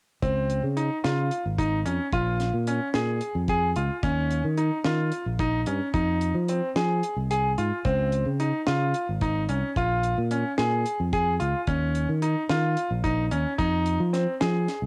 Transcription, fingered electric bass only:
0.23 C#2
0.64 C#3
1.05 C#3
1.46 G#1
1.86 F2
2.13 A#1
2.54 A#2
2.95 A#2
3.35 F2
3.76 C#2
4.03 D#2
4.44 D#3
4.85 D#3
5.26 A#1
5.67 G2
5.94 F2
6.35 F3
6.76 F3
7.16 C2
7.58 G#2
7.85 C#2
8.26 C#3
8.68 C#3
9.09 G#1
9.49 C2
9.76 A#1
10.18 A#2
10.59 A#2
11.00 F2
11.41 C#2
11.67 D#2
12.09 D#3
12.50 D#3
12.91 A#1
13.32 D#2
13.59 F2
14.00 F3
14.42 F3
14.82 C2

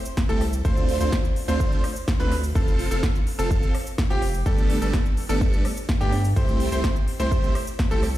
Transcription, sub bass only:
0.29 C2
0.65 D2
1.01 D2
1.48 D2
2.20 D2
2.55 F1
2.91 F1
3.39 F1
4.10 F1
4.46 G1
4.82 G1
5.29 G1
6.01 G2
6.36 C2
6.72 C2
7.20 C2
7.91 C2

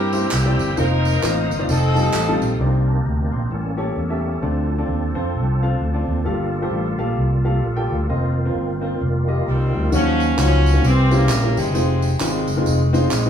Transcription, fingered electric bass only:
Already playing: G2
0.32 C2
0.59 G1
0.78 F1
1.24 A1
1.50 G1
1.69 F1
2.14 A1
2.41 A#1
2.59 C2
3.05 D2
3.32 A#1
3.51 A1
3.96 E2
4.43 D2
4.88 D#2
5.16 F2
5.35 C2
5.80 D2
6.07 D#2
6.26 G1
6.71 A1
6.98 A#1
7.17 C2
7.62 A#1
7.91 D2
8.09 F1
8.55 G1
9.01 F1
9.48 C2
9.74 D2
9.92 D#2
10.38 C#2
10.83 C2
11.30 A#1
11.57 G1
11.74 F1
12.21 G#1
12.49 F#1
12.67 F1
13.12 A#1

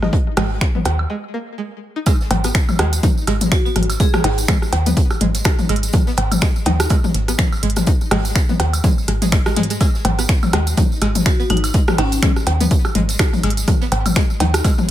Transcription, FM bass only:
0.37 G#1
0.85 D#2
2.31 G#1
2.79 D#2
3.27 G#1
3.76 G#1
4.24 G#1
4.73 D#2
5.21 G#1
5.69 G#1
6.18 G#1
6.66 D#2
7.14 G#1
7.63 G#1
8.11 G#1
8.60 D#2
9.08 G#1
9.56 G#2
10.05 G#1
10.53 D#2
11.02 G#1
11.50 G#1
11.98 G#1
12.47 D#2
12.95 G#1
13.44 G#1
13.92 G#1
14.40 D#2

